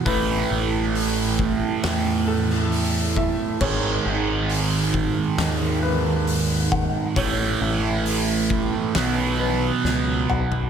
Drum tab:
CC |----------------|x---------------|----------------|
HH |o---o---o---o---|----o---o---o---|o---o---o-------|
SD |--------o--o----|--------o-------|--------o---o---|
T2 |----------------|----------------|--------------o-|
FT |----------------|----------------|---------------o|
BD |o-----o-------o-|o-----o-------o-|o-----o---------|